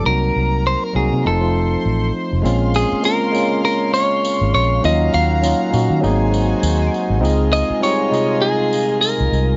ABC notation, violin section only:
X:1
M:4/4
L:1/8
Q:"Swing 16ths" 1/4=100
K:Fphr
V:1 name="Violin section"
[Bb]4 [cc']4 | [K:Bbm] [Dfc']8 | [Gfb]4 [Eca]4 | [Fea]8 |]